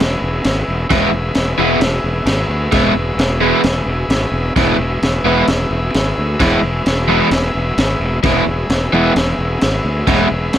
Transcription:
Already playing: transistor combo organ G#4 B4 E5
0.00 fingered electric bass E1, snare, crash
0.22 fingered electric bass E1
0.44 fingered electric bass G#1, snare, crash
0.68 fingered electric bass E1
0.90 fingered electric bass E1, overdriven electric guitar E3 G#3 B3 E4, transistor combo organ G#4 B4 E5, kick, snare, crash
1.12 fingered electric bass E1
1.35 fingered electric bass E1, snare, crash
1.58 fingered electric bass E1, overdriven electric guitar E3 G#3 B3 E4
1.80 fingered electric bass E1, snare, crash
2.04 fingered electric bass E1
2.25 fingered electric bass G#1, snare, crash
2.49 fingered electric bass D2
2.72 fingered electric bass E1, overdriven electric guitar E3 G#3 B3 E4, kick, snare, crash
2.95 fingered electric bass E1
3.17 fingered electric bass E1, snare, crash
3.41 overdriven electric guitar E3 G#3 B3 E4
3.64 fingered electric bass E1, snare, crash
3.86 fingered electric bass E1
4.09 fingered electric bass G#1, snare, crash
4.32 fingered electric bass E1
4.55 fingered electric bass E1, overdriven electric guitar E3 G#3 B3 E4, transistor combo organ G#4 B4 E5, kick, snare, crash
4.78 fingered electric bass E1
5.02 fingered electric bass E1, snare, crash
5.24 fingered electric bass E1, overdriven electric guitar E3 G#3 B3 E4
5.48 fingered electric bass E1, snare, crash
5.71 fingered electric bass E1
5.94 fingered electric bass G#1, snare, crash
6.18 fingered electric bass D2
6.40 fingered electric bass E1, overdriven electric guitar E3 G#3 B3 E4, kick, snare, crash
6.63 fingered electric bass E1
6.86 fingered electric bass E1, snare, crash
7.08 overdriven electric guitar E3 G#3 B3 E4
7.31 fingered electric bass E1, snare, crash
7.55 fingered electric bass E1
7.78 fingered electric bass G#1, snare, crash
8.00 fingered electric bass E1
8.23 fingered electric bass E1, overdriven electric guitar E3 G#3 B3 E4, transistor combo organ G#4 B4 E5, kick, snare, crash
8.47 fingered electric bass E1
8.69 fingered electric bass E1, snare, crash
8.93 fingered electric bass E1, overdriven electric guitar E3 G#3 B3 E4
9.16 fingered electric bass E1, snare, crash
9.39 fingered electric bass E1
9.61 fingered electric bass G#1, snare, crash
9.85 fingered electric bass D2
10.07 fingered electric bass E1, overdriven electric guitar E3 G#3 B3 E4, kick, snare, crash
10.32 fingered electric bass E1
10.53 snare, crash

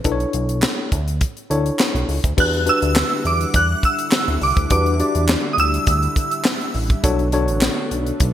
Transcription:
0.04 analog synth bass B1, tine electric piano D4 E4 A4 B4, kick, closed hi-hat
0.12 tine electric piano C#5
0.20 closed hi-hat
0.33 analog synth bass B1, closed hi-hat
0.49 closed hi-hat
0.62 snare, clap
0.92 analog synth bass D2, kick, closed hi-hat
1.08 closed hi-hat
1.21 kick, closed hi-hat
1.37 closed hi-hat
1.50 analog synth bass D2, tine electric piano D4 E4 A4 C#5, closed hi-hat
1.66 closed hi-hat
1.79 snare, clap
1.95 analog synth bass B1, closed hi-hat
2.09 analog synth bass C#2, open hi-hat
2.24 analog synth bass D2, kick, closed hi-hat
2.37 analog synth bass E2, analog synth pad D3 G3 E4 F#5, tine electric piano D4 F#4 G4 B4, synth bell F#6, kick, crash
2.53 closed hi-hat
2.66 tine electric piano D4 F#4 G4 B4, synth bell E6, closed hi-hat
2.82 analog synth bass D2, closed hi-hat
2.96 snare, clap
3.25 analog synth bass E2, synth bell D6, closed hi-hat
3.41 closed hi-hat
3.54 analog synth bass E2, synth bell F#6, kick, closed hi-hat
3.83 synth bell E6, kick, closed hi-hat
3.99 closed hi-hat
4.12 snare, clap
4.28 analog synth bass D2, closed hi-hat
4.42 analog synth bass C2, synth bell D6, open hi-hat
4.57 analog synth bass D2, kick, closed hi-hat
4.70 analog synth bass E2, tine electric piano D4 F#4 G4 B4, synth bell D6, kick, closed hi-hat
4.86 closed hi-hat
5.00 tine electric piano D4 F#4 G4 D5, closed hi-hat
5.15 analog synth bass E2, closed hi-hat
5.29 snare, clap
5.53 synth bell D#6
5.58 analog synth bass D2, synth bell E6, closed hi-hat
5.74 closed hi-hat
5.87 analog synth bass D2, kick, closed hi-hat
6.03 closed hi-hat
6.16 kick, closed hi-hat
6.31 closed hi-hat
6.45 snare, clap
6.61 closed hi-hat
6.74 analog synth bass A1, open hi-hat
6.90 kick, closed hi-hat
7.03 analog synth bass B1, analog synth pad D3 A3 B3 D4, tine electric piano D4 F#4 A4 C#5, kick, closed hi-hat
7.19 closed hi-hat
7.32 tine electric piano D4 F#4 A4 C#5, closed hi-hat
7.48 analog synth bass A1, closed hi-hat
7.61 snare, clap
7.91 analog synth bass B1, closed hi-hat
8.07 closed hi-hat
8.20 analog synth bass B1, kick, closed hi-hat

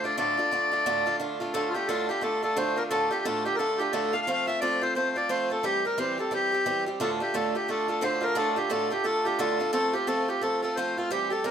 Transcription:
0.04 steel-string acoustic guitar D3 A3 D4 F4, accordion D5
0.17 steel-string acoustic guitar D2 A2 D3 A3 D4 F4, accordion D5
0.38 steel-string acoustic guitar D3 A3 D4 F4
0.51 steel-string acoustic guitar D3 A3 D4 F4
0.72 steel-string acoustic guitar D3 A3 D4 F4
0.86 steel-string acoustic guitar D2 A2 D3 A3 D4 F4
1.06 steel-string acoustic guitar D3 A3 D4 F4
1.19 steel-string acoustic guitar D3 A3 D4 F4
1.40 steel-string acoustic guitar D3 A3 D4 F4
1.54 steel-string acoustic guitar D2 A2 D3 A3 D4 F4, accordion A4
1.69 accordion F4
1.74 steel-string acoustic guitar D3 A3 D4 F4, accordion G4
1.88 steel-string acoustic guitar D2 A2 D3 A3 D4 F4, accordion A4
2.09 steel-string acoustic guitar D3 A3 D4 F4, accordion G4
2.21 steel-string acoustic guitar D3 A3 D4 F4, accordion A4
2.43 steel-string acoustic guitar D3 A3 D4 F4, accordion A4
2.56 steel-string acoustic guitar D2 A2 D3 A3 D4 F4, accordion C5
2.76 steel-string acoustic guitar D3 A3 D4 F4, accordion A#4
2.90 steel-string acoustic guitar D2 A2 D3 A3 D4 F4, accordion A4
3.11 steel-string acoustic guitar D3 A3 D4 F4, accordion G4
3.25 steel-string acoustic guitar D2 A2 D3 A3 D4 F4, accordion A4
3.45 steel-string acoustic guitar D3 A3 D4 F4, accordion G4
3.55 steel-string acoustic guitar D3, accordion A4 A#4
3.59 steel-string acoustic guitar A3 D4 F4
3.78 steel-string acoustic guitar D3 A3 D4 F4, accordion G4
3.92 steel-string acoustic guitar D2 A2 D3 A3 D4 F4, accordion A4
4.13 steel-string acoustic guitar D3 A3 D4 F4, accordion F5
4.22 accordion F5
4.27 steel-string acoustic guitar F3 A3 C4 F4
4.33 accordion F5
4.47 steel-string acoustic guitar A3 C4 F4, accordion E5
4.61 steel-string acoustic guitar F3 A3 C4 F4, accordion D5
4.81 steel-string acoustic guitar A3 C4 F4, accordion C5
4.95 steel-string acoustic guitar F3 A3 C4 F4, accordion C5
5.16 steel-string acoustic guitar A3 C4 F4, accordion D5
5.29 steel-string acoustic guitar F3 A3 C4 F4, accordion C5
5.50 steel-string acoustic guitar A3 C4 F4, accordion A4
5.63 steel-string acoustic guitar E3 G3 C4 G4, accordion G4
5.85 steel-string acoustic guitar G3 C4 G4, accordion A#4
5.98 steel-string acoustic guitar E3 G3 C4 G4, accordion C5
6.18 steel-string acoustic guitar G3 C4 G4, accordion A4
6.31 steel-string acoustic guitar E3 G3 C4 G4, accordion G4
6.52 steel-string acoustic guitar G3 C4 G4
6.66 steel-string acoustic guitar E3 G3 C4 G4
6.86 steel-string acoustic guitar G3 C4 G4
7.00 steel-string acoustic guitar D2 A2 D3 A3 D4 F4, accordion A4
7.20 steel-string acoustic guitar D3 A3 D4 F4, accordion G4
7.34 steel-string acoustic guitar D2 A2 D3 A3 D4 F4, accordion A4
7.55 steel-string acoustic guitar D3 A3 D4 F4, accordion G4
7.68 steel-string acoustic guitar D3 A3 D4 F4, accordion A4
7.88 steel-string acoustic guitar D3 A3 D4 F4, accordion A4
8.01 steel-string acoustic guitar D2 A2 D3 A3 D4 F4, accordion C5
8.21 steel-string acoustic guitar D3 A3 D4 F4, accordion A#4
8.35 steel-string acoustic guitar D2 A2 D3 A3 D4 F4, accordion A4
8.56 steel-string acoustic guitar D3 A3 D4 F4, accordion G4
8.70 steel-string acoustic guitar D2 A2 D3 A3 D4 F4, accordion A4
8.90 steel-string acoustic guitar D3 A3 D4 F4, accordion G4
9.04 steel-string acoustic guitar D3 A3 D4 F4, accordion A4
9.25 steel-string acoustic guitar D3 A3 D4 F4, accordion G4
9.39 steel-string acoustic guitar D2 A2 D3 A3 D4 F4, accordion A4
9.60 steel-string acoustic guitar D3 A3 D4 F4
9.73 steel-string acoustic guitar F3 A3 C4 F4, accordion A4
9.93 steel-string acoustic guitar A3 C4 F4, accordion G4
10.07 steel-string acoustic guitar F3 A3 C4 F4, accordion A4
10.28 steel-string acoustic guitar A3 C4 F4, accordion G4
10.41 steel-string acoustic guitar F3 A3 C4 F4, accordion A4
10.62 steel-string acoustic guitar A3 C4 F4, accordion A4
10.76 steel-string acoustic guitar F3 A3 C4 F4, accordion C5
10.97 steel-string acoustic guitar A3 C4 F4, accordion F4
11.10 steel-string acoustic guitar E3 G3 C4 G4, accordion G4
11.30 steel-string acoustic guitar G3 C4 G4, accordion A4
11.44 steel-string acoustic guitar E3 G3 C4 G4, accordion A#4

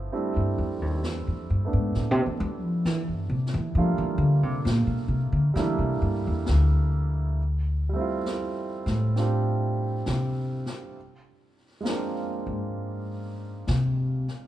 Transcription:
Already playing: grand piano F3 A3 B3 E4
0.12 grand piano G3 A3 C4 D4 E4, brush sweep
0.36 upright bass G2
0.58 upright bass F2
0.81 upright bass D#2
1.04 upright bass E2, snare
1.27 upright bass F2
1.50 upright bass G2
1.65 grand piano A3 B3 D4
1.73 upright bass G#2
1.95 upright bass A2, brush sweep, snare
2.11 upright bass C3
2.26 upright bass E3
2.40 upright bass G3
2.63 upright bass F3
2.85 upright bass E3, snare
3.08 upright bass G2
3.29 upright bass C3
3.46 snare
3.54 upright bass E3
3.75 upright bass F3, grand piano G3 A3 A#3 D4 F4, brush sweep
3.98 upright bass E3
4.18 upright bass D3
4.43 upright bass C3
4.65 upright bass A#2, snare
4.87 upright bass B2
5.08 upright bass C3
5.32 upright bass D3
5.54 upright bass E3, grand piano G3 A3 A#3 D4, brush sweep, snare
5.59 grand piano E4
5.79 upright bass C3
6.02 upright bass G2
6.27 upright bass E2
6.46 upright bass D2, snare
7.37 brush sweep
7.89 grand piano G3
7.93 grand piano A3 C4
7.99 grand piano E4 F4
8.26 snare
8.86 upright bass A2, snare
9.16 grand piano C4 D4 F4 G4, brush sweep, snare
10.06 upright bass C3, snare
10.66 snare
10.95 brush sweep
11.81 grand piano G#3 A#3
11.85 grand piano C4 D4, snare
11.90 grand piano F4
12.46 upright bass G#2
12.75 brush sweep
13.67 upright bass C3, snare
14.28 snare

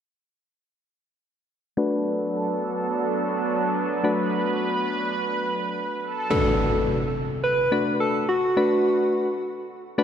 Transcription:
1.77 analog synth pad F#3 B3 D4 A4, synth keys A3 D4 F#4 B4
4.04 synth keys A3 D4 F#4 B4, analog synth pad B4
6.02 analog synth pad A4
6.30 synth keys A3 D4 F#4 B4, soft synth lead A4, impact
7.44 soft synth lead B4
7.72 synth keys A3 D4 F#4 B4
8.00 soft synth lead A4
8.29 soft synth lead F#4
8.57 synth keys A3 D4 F#4 B4
9.98 synth keys A3 D4 F#4 B4

